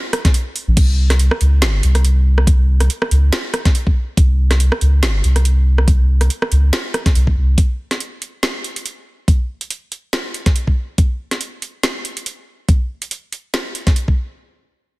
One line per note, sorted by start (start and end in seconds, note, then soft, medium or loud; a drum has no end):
0.13 cross-stick medium
0.13 closed hi-hat medium
0.25 kick loud
0.25 snare soft
0.25 closed hi-hat medium
0.34 closed hi-hat medium
0.56 open hi-hat loud
0.67 0.76 A#1 medium
0.77 1.30 C2 medium
0.77 kick loud
0.77 closed hi-hat medium
0.77 crash medium
1.10 cross-stick medium
1.10 snare soft
1.10 closed hi-hat medium
1.20 closed hi-hat medium
1.31 cross-stick medium
1.41 1.64 C#2 medium
1.41 closed hi-hat medium
1.62 1.82 G1 medium
1.62 snare loud
1.62 closed hi-hat medium
1.83 2.89 C2 medium
1.83 closed hi-hat medium
1.95 cross-stick medium
1.95 closed hi-hat medium
2.05 closed hi-hat medium
2.38 cross-stick medium
2.47 kick loud
2.47 closed hi-hat medium
2.80 cross-stick soft
2.80 closed hi-hat medium
2.90 closed hi-hat medium
3.02 cross-stick medium
3.11 3.31 C#2 medium
3.11 closed hi-hat medium
3.33 snare loud
3.33 closed hi-hat medium
3.54 cross-stick medium
3.54 closed hi-hat medium
3.65 kick loud
3.65 snare soft
3.65 closed hi-hat medium
3.75 closed hi-hat medium
3.87 kick medium
4.17 4.70 C2 loud
4.17 kick loud
4.17 closed hi-hat medium
4.51 cross-stick soft
4.51 snare soft
4.51 closed hi-hat medium
4.60 closed hi-hat medium
4.72 cross-stick medium
4.81 5.04 C#2 medium
4.81 closed hi-hat medium
5.03 5.22 G1 medium
5.03 snare loud
5.03 closed hi-hat medium
5.24 6.29 C2 medium
5.24 closed hi-hat medium
5.36 cross-stick soft
5.36 closed hi-hat medium
5.45 closed hi-hat medium
5.78 cross-stick medium
5.88 kick loud
5.88 closed hi-hat medium
6.21 cross-stick soft
6.21 closed hi-hat soft
6.30 closed hi-hat medium
6.42 cross-stick medium
6.52 6.71 C#2 medium
6.52 closed hi-hat soft
6.73 snare loud
6.73 closed hi-hat medium
6.94 cross-stick medium
6.94 closed hi-hat medium
7.06 kick loud
7.06 snare soft
7.06 closed hi-hat medium
7.15 7.35 C2 loud
7.15 closed hi-hat medium
7.27 kick medium
7.37 7.56 C2 medium
7.58 kick loud
7.58 closed hi-hat medium
7.91 snare soft
7.91 closed hi-hat soft
8.01 closed hi-hat medium
8.22 closed hi-hat soft
8.43 snare loud
8.43 closed hi-hat medium
8.64 closed hi-hat soft
8.76 closed hi-hat soft
8.86 closed hi-hat medium
9.28 kick loud
9.28 closed hi-hat medium
9.61 closed hi-hat soft
9.70 closed hi-hat medium
9.92 closed hi-hat soft
10.13 snare loud
10.13 closed hi-hat medium
10.34 closed hi-hat soft
10.46 kick loud
10.46 snare soft
10.46 closed hi-hat soft
10.56 closed hi-hat medium
10.67 kick medium
10.98 kick loud
10.98 closed hi-hat medium
11.31 snare soft
11.31 closed hi-hat soft
11.41 closed hi-hat medium
11.62 closed hi-hat soft
11.83 snare loud
11.83 closed hi-hat medium
12.05 closed hi-hat soft
12.17 closed hi-hat soft
12.26 closed hi-hat medium
12.69 kick loud
12.69 closed hi-hat medium
13.02 closed hi-hat soft
13.11 closed hi-hat medium
13.32 closed hi-hat soft
13.54 snare loud
13.54 closed hi-hat medium
13.75 closed hi-hat medium
13.87 kick medium
13.87 snare soft
13.87 closed hi-hat soft
13.96 closed hi-hat medium
14.08 kick medium